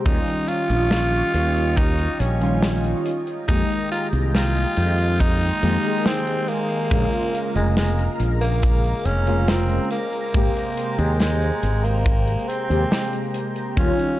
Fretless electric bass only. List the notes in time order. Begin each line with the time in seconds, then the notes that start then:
0.06 D#2
0.70 A#1
1.34 D#2
2.20 A#1
3.49 F2
4.13 C2
4.77 F2
5.63 F2
6.91 A#1
7.56 F1
8.20 A#1
9.05 F1
10.34 G#1
10.99 D#2
11.63 G#1
12.70 D#2
13.77 D#2